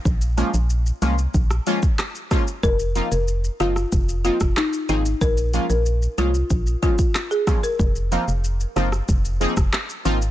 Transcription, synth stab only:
\new Staff \with { instrumentName = "Synth stab" } { \time 4/4 \key bes \minor \tempo 4 = 93 r8 <f aes bes des' f'>8 r8 <f aes bes des' f'>8 r8 <f aes bes des' f'>8 r8 <f aes bes des' f'>8 | r8 <f bes c' ees' f'>8 r8 <f bes c' ees' f'>8 r8 <f bes c' ees' f'>8 r8 <f bes c' ees' aes'>8 | r8 <f aes bes des' f'>8 r8 <f aes bes des' f'>8 r8 <f aes bes des' f'>8 r8 <f aes bes des' f'>8 | r8 <f bes c' ees' f'>8 r8 <f bes c' ees' f'>8 r8 <f bes c' ees' aes'>8 r8 <f bes c' ees' f'>8 | }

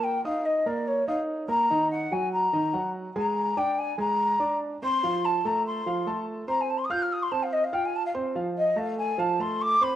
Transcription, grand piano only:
\new Staff \with { instrumentName = "Grand piano" } { \time 4/4 \key f \mixolydian \tempo 4 = 144 <bes bes' bes''>8 <ees' ees'' ees'''>4 <bes bes' bes''>4 <ees' ees'' ees'''>4 <bes bes' bes''>8 | <ees ees' ees''>4 <ges ges' ges''>4 <ees ees' ees''>8 <ges ges' ges''>4 <aes aes' aes''>8~ | <aes aes' aes''>8 <d' d'' d'''>4 <aes aes' aes''>4 <d' d'' d'''>4 <c' c'' c'''>8 | <f f' f''>4 <a a' a''>4 <f f' f''>8 <a a' a''>4 <c' c'' c'''>8~ |
<c' c'' c'''>8 <f' f'' f'''>4 <c' c'' c'''>4 <f' f'' f'''>4 <c' c'' c'''>8 | <f f' f''>4 <a a' a''>4 <f f' f''>8 <a a' a''>4 <c' c'' c'''>8 | }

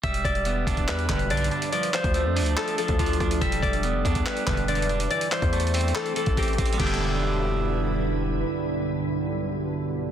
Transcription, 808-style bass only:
\new Staff \with { instrumentName = "808-style bass" } { \clef bass \time 4/4 \key e \phrygian \tempo 4 = 142 e,,8 e,,4 e,,8 e,8 e,,8 b,,8 r8 | r8. d,8 f,16. d,16. r8. d,8. d,8 | e,,8 e,,8. f,,16 e,8 r8 e,,4. | r8. e,4~ e,16 r8. a,,8. a,,8 |
e,,1 | r1 | }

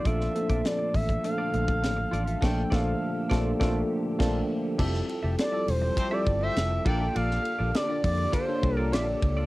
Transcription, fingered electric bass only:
\new Staff \with { instrumentName = "Fingered electric bass" } { \clef bass \time 4/4 \key bes \lydian \tempo 4 = 101 bes,,8 r16 bes,,16 r8 a,,8 r8 bes,,8 a,,8 a,,8 | bes,,8 bes,,8 r8 bes,,8 bes,,8 r8 bes,,8 r8 | f,,8 r16 f,,16 r8 e,,8 r8 g,,8 f,,8 bes,,8 | bes,,8 r16 bes,,16 r8 f,8 r8 c,8 bes,,8 des,8 | }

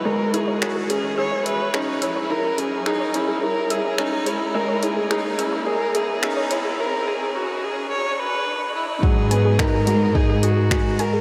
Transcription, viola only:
\new Staff \with { instrumentName = "Viola" } { \time 4/4 \key cis \dorian \tempo 4 = 107 ais'8 gis'8 fis'8 gis'8 cis''8 b'8 dis'8 e'8 | ais'8 gis'8 dis'8 e'8 ais'8 gis'8 dis'8 e'8 | ais'8 gis'8 dis'8 e'8 ais'8 gis'8 dis'8 e'8 | ais'8 gis'8 fis'8 gis'8 cis''16. cis''32 b'4 e'8 |
gis'4 ais'4 gis'8 fis'4 ais'8 | }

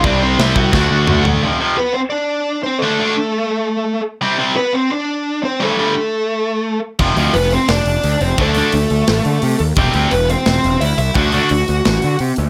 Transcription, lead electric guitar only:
\new Staff \with { instrumentName = "Lead electric guitar" } { \time 4/4 \key d \mixolydian \tempo 4 = 173 <d' d''>8 <c' c''>8 <e' e''>8 <fis' fis''>2 r8 | r4 <b b'>8 <c' c''>8 <d' d''>4. <c' c''>8 | <a a'>2.~ <a a'>8 r8 | r4 <b b'>8 <c' c''>8 <d' d''>4. <c' c''>8 |
<a a'>2.~ <a a'>8 r8 | r4 <b b'>8 <c' c''>8 <d' d''>4. <c' c''>8 | <a a'>2.~ <a a'>8 r8 | r4 <b b'>8 <c' c''>4. <e' e''>8 <e' e''>8 |
<fis' fis''>2. r4 | }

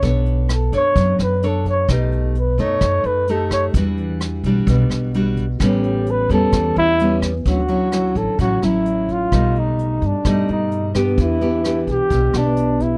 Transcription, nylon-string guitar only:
\new Staff \with { instrumentName = "Nylon-string guitar" } { \time 4/4 \key d \major \tempo 4 = 129 << { <d' a' cis''>4 r8 <d' a' cis''>4. <d' a' cis''>4 | <a dis' g'>4 r8 <a dis'>4. <a dis' g'>4 | <g d' fis'>4. <g d' fis'>4. <g d' fis'>8 r8 | <g b cis'>4. <g b cis'>4. <g b cis'>8 r8 |
<fis cis' e'>8 <fis cis' e'>8 <fis cis' e'>4 <fis cis' e'>8 <fis cis' e'>4. | <g a dis'>2 <g a dis'>4. <b d' g'>8~ | <b d' g'>8 <b d' g'>8 <b d' g'>4. <b d' g'>4. | } \\ { b2 fis2 | b,2 r2 | e2 b,2 | a,2 e2 |
d2 a,2 | b,2 b,2 | e2 b,2 | } >> }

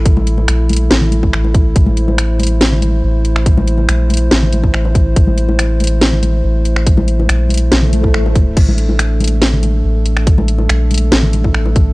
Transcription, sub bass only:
\new Staff \with { instrumentName = "Sub bass" } { \clef bass \time 4/4 \key a \phrygian \tempo 4 = 141 a,,4 bes,,4 a,,4 a,,4 | a,,2. a,,4~ | a,,4 bes,,4 a,,2 | r2. a,,4~ |
a,,4 bes,,4 bes,,4 a,,4 | a,,2. a,,4~ | a,,4 bes,,4 a,,2 | }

